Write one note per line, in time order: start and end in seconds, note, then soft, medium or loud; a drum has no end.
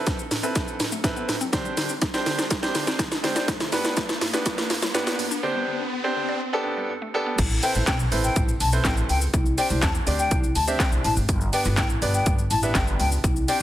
0.00 0.19 C4 medium
0.00 0.19 E4 medium
0.00 0.19 A4 medium
0.00 0.19 B4 loud
0.00 riser medium
0.07 kick loud
0.07 snare medium
0.07 closed hi-hat medium
0.07 shaker medium
0.19 shaker medium
0.31 0.40 A2 medium
0.31 snare loud
0.31 open hi-hat medium
0.31 shaker medium
0.43 0.80 C4 medium
0.43 0.53 C4 medium
0.43 0.80 E4 medium
0.43 0.80 A4 medium
0.43 0.80 B4 medium
0.43 shaker medium
0.55 kick loud
0.55 snare medium
0.55 closed hi-hat medium
0.55 shaker medium
0.68 shaker medium
0.80 0.89 A2 medium
0.80 snare medium
0.80 open hi-hat medium
0.80 shaker medium
0.92 1.02 A3 medium
0.92 shaker medium
1.04 1.14 A2 medium
1.04 1.34 C4 medium
1.04 1.34 E4 medium
1.04 1.34 A4 medium
1.04 1.34 B4 loud
1.04 kick loud
1.04 snare loud
1.04 closed hi-hat medium
1.04 shaker medium
1.17 1.26 B3 medium
1.17 shaker medium
1.29 1.38 A2 medium
1.29 snare medium
1.29 open hi-hat medium
1.29 shaker medium
1.41 1.50 C4 loud
1.41 shaker medium
1.52 1.62 D3 medium
1.52 1.90 C4 medium
1.52 1.90 D4 medium
1.52 1.90 G4 medium
1.52 1.90 C5 loud
1.52 kick loud
1.52 snare loud
1.52 closed hi-hat medium
1.52 shaker medium
1.65 1.75 G3 medium
1.65 shaker medium
1.77 1.87 D3 medium
1.77 snare loud
1.77 open hi-hat medium
1.77 shaker medium
1.89 shaker medium
2.02 kick loud
2.02 snare loud
2.02 closed hi-hat medium
2.02 shaker medium
2.14 2.44 C4 loud
2.14 2.44 D4 medium
2.14 2.44 G4 medium
2.14 2.44 C5 loud
2.14 snare loud
2.14 shaker medium
2.26 2.36 D3 medium
2.26 snare loud
2.26 open hi-hat medium
2.26 shaker medium
2.38 2.48 D5 medium
2.38 snare loud
2.38 shaker medium
2.51 kick loud
2.51 snare loud
2.51 closed hi-hat medium
2.51 shaker medium
2.62 3.00 C4 loud
2.62 3.00 D4 medium
2.62 3.00 G4 medium
2.62 3.00 C5 loud
2.62 snare loud
2.62 shaker medium
2.75 2.84 D3 medium
2.75 snare loud
2.75 open hi-hat medium
2.75 shaker medium
2.87 2.97 C4 medium
2.87 snare loud
2.87 shaker medium
2.99 3.09 D3 medium
2.99 kick loud
2.99 snare loud
2.99 closed hi-hat medium
2.99 shaker medium
3.12 3.21 D4 medium
3.12 snare loud
3.12 shaker medium
3.23 3.33 D3 medium
3.23 3.48 C4 medium
3.23 3.48 D4 medium
3.23 3.48 G4 medium
3.23 3.48 C5 loud
3.23 snare loud
3.23 open hi-hat medium
3.23 shaker medium
3.36 3.46 D5 loud
3.36 snare loud
3.36 shaker medium
3.48 3.58 G2 medium
3.48 kick loud
3.48 snare loud
3.48 closed hi-hat medium
3.48 shaker medium
3.60 3.70 D3 medium
3.60 snare loud
3.60 shaker medium
3.72 3.82 G2 medium
3.72 4.09 B3 medium
3.72 4.10 D4 medium
3.72 4.10 G4 medium
3.72 4.10 B4 loud
3.72 snare loud
3.72 open hi-hat medium
3.72 shaker medium
3.84 snare loud
3.84 shaker medium
3.97 kick loud
3.97 snare loud
3.97 closed hi-hat medium
3.97 shaker medium
4.09 snare loud
4.09 shaker medium
4.21 4.31 G2 medium
4.21 snare loud
4.21 open hi-hat medium
4.21 shaker medium
4.33 4.70 B3 medium
4.33 4.71 D4 medium
4.33 4.43 D4 medium
4.33 4.71 G4 medium
4.33 4.71 B4 loud
4.33 snare loud
4.33 shaker medium
4.46 kick loud
4.46 snare loud
4.46 closed hi-hat medium
4.46 shaker medium
4.58 snare loud
4.58 shaker medium
4.70 4.80 G2 medium
4.70 snare loud
4.70 open hi-hat medium
4.70 shaker medium
4.82 4.92 G3 medium
4.82 snare loud
4.82 shaker medium
4.94 5.04 G2 medium
4.94 5.24 B3 loud
4.94 5.24 D4 medium
4.94 5.24 G4 medium
4.94 5.24 B4 loud
4.94 snare loud
4.94 closed hi-hat medium
4.94 shaker medium
5.07 5.16 B3 medium
5.07 snare loud
5.07 shaker medium
5.19 5.28 G2 medium
5.19 open hi-hat medium
5.19 shaker medium
5.31 5.40 D4 loud
5.31 shaker medium
5.43 5.53 D3 medium
5.43 5.80 C4 medium
5.43 5.80 D4 medium
5.43 5.80 G4 medium
5.43 5.80 C5 loud
5.55 5.65 G3 medium
5.68 5.77 D3 medium
6.04 6.34 C4 loud
6.04 6.34 D4 medium
6.04 6.34 G4 medium
6.04 6.34 C5 loud
6.16 6.26 D3 medium
6.29 6.38 D5 medium
6.53 6.90 B3 loud
6.53 6.90 D4 medium
6.53 6.90 G4 medium
6.53 6.90 A4 loud
6.65 6.75 G2 medium
6.77 6.87 G3 medium
6.90 6.99 G2 medium
7.02 7.11 A3 medium
7.14 7.24 G2 medium
7.14 7.38 B3 medium
7.14 7.39 D4 medium
7.14 7.39 G4 medium
7.14 7.39 A4 loud
7.26 7.36 B3 loud
7.39 7.58 A1 loud
7.39 kick loud
7.39 closed hi-hat medium
7.39 crash loud
7.39 shaker medium
7.51 shaker medium
7.63 7.93 C4 medium
7.63 7.93 E4 medium
7.63 7.93 A4 medium
7.63 7.93 B4 medium
7.63 7.93 C5 medium
7.63 7.72 G5 medium
7.63 open hi-hat medium
7.63 shaker medium
7.75 7.85 A1 loud
7.75 shaker medium
7.87 8.06 B1 loud
7.87 7.97 G5 medium
7.87 kick loud
7.87 snare loud
7.87 clap loud
7.87 closed hi-hat medium
7.87 shaker medium
8.00 shaker medium
8.11 8.31 A1 loud
8.11 8.49 C4 medium
8.11 8.49 E4 medium
8.11 8.49 A4 medium
8.11 8.49 B4 medium
8.11 8.49 C5 medium
8.11 open hi-hat medium
8.11 shaker medium
8.24 8.42 G5 medium
8.24 shaker medium
8.36 8.55 A1 loud
8.36 kick loud
8.36 closed hi-hat medium
8.36 shaker medium
8.48 shaker medium
8.60 8.79 B1 medium
8.60 8.70 A5 medium
8.60 open hi-hat medium
8.60 shaker medium
8.73 9.25 C4 medium
8.73 9.25 E4 medium
8.73 9.25 A4 medium
8.73 9.25 B4 medium
8.73 9.25 C5 medium
8.73 shaker medium
8.85 9.04 A1 loud
8.85 8.94 G5 medium
8.85 kick loud
8.85 snare loud
8.85 clap loud
8.85 closed hi-hat medium
8.85 shaker medium
8.97 shaker medium
9.09 9.28 C#2 medium
9.09 9.19 G5 medium
9.09 open hi-hat medium
9.09 shaker medium
9.22 shaker medium
9.34 9.53 C2 loud
9.34 kick loud
9.34 closed hi-hat medium
9.34 shaker medium
9.46 shaker soft
9.58 9.87 C4 medium
9.58 9.88 D4 medium
9.58 9.88 G4 medium
9.58 9.88 C5 medium
9.58 9.88 D5 medium
9.58 9.67 G5 medium
9.58 open hi-hat medium
9.58 shaker medium
9.70 9.80 C2 loud
9.70 shaker medium
9.82 9.92 A5 medium
9.82 kick loud
9.82 snare loud
9.82 clap loud
9.82 closed hi-hat medium
9.82 shaker medium
9.95 shaker medium
10.07 10.26 D2 loud
10.07 10.44 C4 medium
10.07 10.44 D4 medium
10.07 10.44 G4 medium
10.07 10.44 C5 medium
10.07 10.44 D5 medium
10.07 open hi-hat medium
10.07 shaker medium
10.19 10.37 G5 medium
10.19 shaker medium
10.31 10.50 C2 loud
10.31 kick loud
10.31 closed hi-hat medium
10.31 shaker medium
10.44 shaker medium
10.55 10.75 D2 medium
10.55 10.65 A5 medium
10.55 open hi-hat medium
10.55 shaker medium
10.67 11.20 C4 medium
10.67 11.20 D4 medium
10.67 11.20 G4 medium
10.67 11.20 C5 medium
10.67 11.20 E5 medium
10.67 shaker medium
10.80 10.89 G5 medium
10.80 kick loud
10.80 snare loud
10.80 clap loud
10.80 closed hi-hat medium
10.80 shaker medium
10.92 11.02 C2 medium
10.92 shaker medium
11.04 11.14 A1 loud
11.04 11.14 A5 medium
11.04 open hi-hat medium
11.04 shaker medium
11.17 11.26 G#1 loud
11.17 shaker medium
11.29 11.48 G1 loud
11.29 kick loud
11.29 closed hi-hat medium
11.29 shaker medium
11.41 shaker medium
11.53 11.83 B3 medium
11.53 11.83 D4 medium
11.53 11.83 G4 medium
11.53 11.83 B4 medium
11.53 11.83 D5 medium
11.53 11.62 G5 medium
11.53 open hi-hat medium
11.53 shaker medium
11.65 11.75 G1 loud
11.65 shaker medium
11.77 11.97 A1 loud
11.77 11.87 G5 medium
11.77 kick loud
11.77 snare loud
11.77 clap loud
11.77 closed hi-hat medium
11.77 shaker medium
11.90 shaker medium
12.02 12.21 G1 loud
12.02 12.39 B3 medium
12.02 12.39 D4 medium
12.02 12.39 G4 medium
12.02 12.39 B4 medium
12.02 12.39 D5 medium
12.02 open hi-hat medium
12.02 shaker medium
12.14 12.33 G5 medium
12.14 shaker medium
12.26 12.45 G1 loud
12.26 kick loud
12.26 closed hi-hat medium
12.26 shaker medium
12.39 shaker medium
12.51 12.70 A1 loud
12.51 12.60 A5 medium
12.51 open hi-hat medium
12.51 shaker medium
12.63 13.15 B3 medium
12.63 13.15 D4 medium
12.63 13.15 G4 medium
12.63 13.15 B4 medium
12.63 13.15 E5 medium
12.63 shaker medium
12.75 12.94 G1 loud
12.75 12.84 G5 medium
12.75 kick loud
12.75 snare loud
12.75 clap loud
12.75 closed hi-hat medium
12.75 shaker medium
12.87 shaker medium
12.99 13.18 C#2 medium
12.99 13.09 G5 medium
12.99 open hi-hat medium
12.99 shaker medium
13.12 shaker medium
13.24 13.43 C2 loud
13.24 kick loud
13.24 closed hi-hat medium
13.24 shaker medium
13.36 shaker medium
13.48 13.62 C4 medium
13.48 13.62 D4 medium
13.48 13.62 G4 medium
13.48 13.62 C5 medium
13.48 13.62 D5 medium
13.48 13.57 G5 medium
13.48 open hi-hat medium
13.48 shaker medium